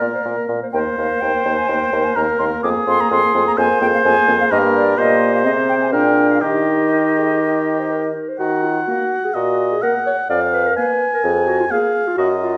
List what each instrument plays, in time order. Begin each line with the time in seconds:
Already playing: clarinet A#4, oboe A#4, flute D5
0.01 bassoon A#2, french horn A#3
0.14 clarinet C5
0.25 bassoon A#2, french horn A#3, clarinet A#4
0.49 bassoon A#2, french horn A#3
0.63 clarinet C5
0.73 bassoon D#2, french horn A#3, clarinet A#4, oboe C5, flute G5
0.98 bassoon D#2, french horn A#3, clarinet A#4, flute F5
1.21 bassoon D#2, french horn A#3, clarinet A#4, flute G5
1.45 bassoon D#2, french horn A#3, clarinet A#4
1.57 flute G#5
1.68 bassoon D#2, french horn A#3, clarinet A#4, flute G5
1.92 bassoon D#2, french horn A#3, clarinet A#4
2.04 flute G#5
2.16 bassoon D#2, french horn A#3, oboe A#4, clarinet A#4, flute A#5
2.39 bassoon D#2, french horn A#3, clarinet A#4, flute C6
2.63 bassoon F2, french horn A#3, clarinet G#4, oboe G#4, flute D6
2.87 bassoon F2, french horn A#3, clarinet G#4, flute C6
3.01 flute A#5
3.11 bassoon F2, french horn A#3, clarinet G#4, flute C6
3.34 bassoon F2, french horn A#3, clarinet G#4
3.47 flute A#5
3.57 bassoon F2, french horn A#3, clarinet G#4, oboe C5, flute G#5
3.81 bassoon F2, french horn A#3, clarinet G#4, flute G5
3.94 flute F5
4.05 bassoon F2, french horn A#3, clarinet G#4, flute G#5
4.28 bassoon F2, french horn A#3, clarinet G#4
4.41 flute F5
4.51 bassoon G2, french horn A#3, clarinet G4, oboe A#4, flute D#5
4.75 flute D5
4.98 bassoon A#2, french horn A#3, clarinet G4, oboe C5, flute D#5
5.35 flute F5
5.45 bassoon C3, french horn C4, clarinet G#4, flute D#5
5.69 flute G5
5.82 flute G#5
5.92 bassoon A#2, french horn D4, clarinet G#4, oboe A#4, flute G5
6.31 flute F5
6.42 bassoon D#3, french horn D#4, oboe G4, clarinet G4, flute D#5
6.92 clarinet A#4
7.16 clarinet G#4
7.41 clarinet A#4
7.79 clarinet C5
7.90 clarinet A#4
8.29 clarinet C5
8.39 bassoon D#3, clarinet F#4, oboe F#5
8.63 clarinet F4
8.87 french horn A#3, clarinet F#4, flute F#5
9.24 clarinet G#4
9.34 bassoon A#2, clarinet F#4, oboe D#5
9.72 clarinet G#4
9.82 french horn A#3, clarinet A#4, flute F#5, oboe F#5
10.06 clarinet C#5
10.29 bassoon F2, clarinet D5, oboe F5
10.53 clarinet B4
10.66 clarinet A#4
10.77 french horn A#3, clarinet B4, flute F5, oboe G#5
11.13 clarinet A#4
11.24 bassoon F2, clarinet G#4
11.47 clarinet F#4
11.60 clarinet F4
11.70 french horn A#3, clarinet G#4, flute F5, oboe F5
12.07 clarinet F4
12.18 bassoon F#2, clarinet F#4, oboe D#5
12.41 clarinet F4